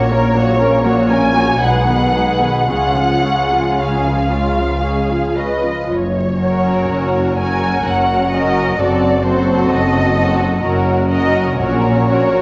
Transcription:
Already playing: A#1 A#2 F#3 F#4 C#5
0.10 A#3 C#4 A#4
0.34 F#3 A#3 F#4 C#5
0.59 A#3 C#4 A#4
0.84 F#3 A#3 F#4 C#5
1.09 A#3 C#4 A#4 G#5
1.35 F#3 A#3 F#4 C#5
1.60 B1 B2 G#3 D#4 G#4 B4 F#5
1.86 D#3 B3 G#4 B4
2.13 G#3 D#4 G#4 B4
2.40 D#3 B3 G#4 B4
2.68 C#2 C#3 G#3 C#4 F4 G#4 F#5
2.96 F3 F4 G#4
3.23 G#3 C#4 F4 G#4
3.51 F3 F4 G#4
3.78 G#3 C#4 G#4 F5
4.06 F3 F4
4.31 G#3 C#4 F4
4.57 F3 F4
4.83 G#3 C#4 G#4
5.10 F3 F4
5.35 G#3 C#4 B4 D#5
5.62 F3 F4
5.88 F#1 F#2 C#5
6.38 F#3 C#4 F#4 A#4
6.89 F#1 F#2
7.38 F#3 C#4 F#4 A#4 G#5
7.86 F#1 F#2 F#5
8.32 F#3 C#4 F#4 A#4 D#5
8.78 F#1 F#2 F#3 C4 F#4 A4 D5
9.22 F#3 C4 F#4 A4 C5
9.70 F#1 F#2 D#5
10.17 F#3 C4 F#4 A4
10.62 F#1 F#2 F#3 C#4 F#4 A#4
11.09 F#3 C#4 F#4 A#4 D#5
11.58 A#1 A#2 F#3 C#4 F#4 A#4 C#5
12.07 F#3 C#4 F#4 A#4

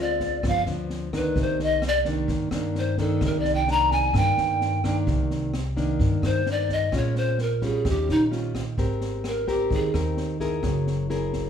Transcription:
Already playing: D2 D3 G#3
0.00 C4 F4 D5
0.20 kick, snare
0.43 G1 G2 F3 B3 D4, kick, cross-stick, snare
0.48 F5
0.66 D2 F3 B3 D4, snare
0.90 snare
1.13 D#3 A#3 D4 B4, kick, cross-stick, snare
1.36 C2 C3, kick, snare
1.42 C5
1.59 D#5, snare
1.82 cross-stick, snare
1.88 D5
2.05 D#3 A#3 D4, kick, snare
2.28 G2, kick, snare
2.51 G2 D#3 A#3 D4, cross-stick, snare
2.75 C5, snare
2.98 D#3 A#3 D4 A4, kick, snare
3.21 C2 C3, kick, cross-stick, snare
3.26 A#4
3.40 D5
3.45 snare
3.55 G5
3.67 D#3 A#3 D4, snare
3.71 A#5
3.91 G#5, kick, snare
4.13 G2 D#3 A#3 D4 G5, kick, cross-stick, snare
4.38 G2, snare
4.61 snare
4.84 D#3 A#3 D4, kick, cross-stick, snare
5.07 C2 C3, kick, snare
5.31 snare
5.54 cross-stick, snare
5.76 D#3 A#3 D4, kick, snare
5.99 G2, kick, snare
6.22 G2 C5, cross-stick, snare
6.46 D#3 A#3 D4, snare
6.51 D5
6.69 D#5, kick, snare
6.92 A#1 A#2 G#3 C#4 F4, kick, cross-stick, snare
6.97 C#5
7.16 C5, snare
7.39 A#4, snare
7.62 G3 C#4 F4 G#4, kick, snare
7.85 D#2 D#3, kick, cross-stick, snare
7.90 G4
8.09 A#1 D#4, snare
8.31 G3 C#4 F4, snare
8.55 kick, cross-stick, snare
8.78 G#1 G#3 C4 G4 A#4, kick, snare
9.01 snare
9.24 A#4, cross-stick, snare
9.47 C4 G4 A#4, kick, snare
9.70 D#2 D#3 G#4, kick, snare
9.93 D#2 C4 G4 A#4, cross-stick, snare
10.17 snare
10.40 E4 G#4 A#4, kick, snare
10.63 F#1 F#3, kick, cross-stick, snare
10.87 snare
11.10 E4 G#4 A#4, snare
11.33 kick, snare

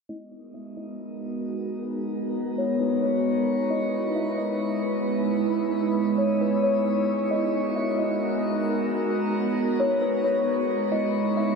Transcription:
0.09 G#3 B3 D#4 F#4 A#4 D#5
0.54 E5
0.77 D#5
2.58 C#5
2.80 B4
3.02 C#5
3.70 G#3 B3 E4 B4 D#5
4.15 E5
4.38 D#5
5.51 C#5
6.18 C#5
6.41 B4
6.63 C#5
7.31 G#3 F#4 A#4 D#5
7.76 E5
7.99 D#5
9.80 C#5
10.02 B4
10.24 C#5
10.92 D#4 E4 B4 D#5
11.37 E5

